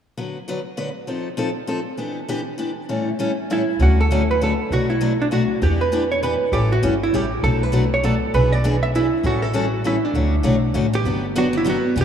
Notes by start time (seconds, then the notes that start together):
0.17 D3 F#3 B3 F#4 B4
0.48 D3 F#3 B3 F#4 B4
0.77 D3 F#3 B3 F#4 B4
1.07 F3 C4 D#4 A4
1.37 F3 C4 D#4 A4
1.67 F3 C4 D#4 A4
1.97 E3 B3 D4 G4
2.29 E3 B3 D4 G4
2.58 E3 B3 D4 G4
2.89 A2 E3 G3 C#4 E4 A4
3.19 A2 E3 G3 C#4 E4 A4
3.50 A2 E3 G3 C#4 E4 A4
3.79 D2 D3 F#3 A3 C#4 F#4
4.01 A4
4.11 D3 F#3 A3 C#4 F#4
4.31 B4
4.41 D3 F#3 A3 C#4 F#4 A4
4.71 B1 B2 F#3 A3 D4 F#4
4.90 E4
5.01 B2 F#3 A3 D4 F#4
5.22 D4
5.31 B2 F#3 A3 D4 F#4
5.62 E2 E3 B3 D4 G4
5.81 B4
5.92 E3 B3 D4 G4
6.12 C#5
6.23 E3 B3 D4 G4 B4
6.52 A1 E3 G3 C#4 E4 G4 A4
6.72 F#4
6.83 G1 E3 G3 C#4 E4 A4
7.03 E4
7.13 A1 E3 G3 C#4 E4 G4 A4
7.43 B1 B2 F#3 A3 D4 F#4 A4
7.63 B4
7.72 B2 F#3 A3 D4 F#4
7.94 C#5
8.03 B2 F#3 A3 D4 F#4 A4
8.34 B1 B2 E3 B3 D4 G#4 B4
8.52 D5
8.64 B2 E3 B3 D4 G#4
8.83 E5
8.95 B2 E3 B3 D4 E4 G#4
9.23 A1 E3 G3 C#4 E4 F#4 A4
9.42 A4
9.53 E3 G3 C#4 E4 F#4 A4
9.84 E3 G3 C#4 E4 A4
10.05 D4
10.14 D2 D3 F#3 A3 C#4 F#4
10.43 B1 D3 F#3 A3 C#4 F#4
10.74 A1 D3 F#3 A3 C#4 F#4
10.93 B3 G4
11.04 G1 D3 F#3 B3 D4 G4
11.36 D3 F#3 B3 D4 F#4 G4
11.53 G3
11.57 E4
11.64 D3 F#3 B3 D4 G4
11.70 F#4
11.96 E1 E3 B3 D4 G4
12.01 G4